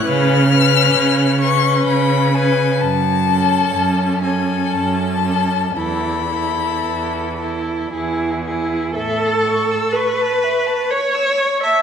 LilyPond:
<<
  \new Staff \with { instrumentName = "Violin" } { \time 3/4 \key a \major \tempo 4 = 61 eis'''4. cis'''8 b''8 gis''8 | a''4. gis''8 a''4 | b''2 r4 | cis'''2. | }
  \new Staff \with { instrumentName = "Violin" } { \time 3/4 \key a \major b'8 b'4 b'4 b'8 | r8 a'4 a'4 a'8 | a'8 a'4 a'8 gis'8 gis'8 | e''16 a''16 cis'''16 e'''16 cis'''16 a''16 e''16 a''16 cis'''16 e'''16 cis'''16 a''16 | }
  \new Staff \with { instrumentName = "Viola" } { \time 3/4 \key a \major cis'8 cis'4 cis'4 cis'8 | r8 cis'4 cis'4 cis'8 | e'8 e'4 e'8 e'8 e'8 | a'4 b'4 cis''8. e''16 | }
  \new Staff \with { instrumentName = "Cello" } { \clef bass \time 3/4 \key a \major cis4 cis4 cis4 | fis,4 fis,4 fis,4 | e,4 e,4 e,4 | a,4 r2 | }
>>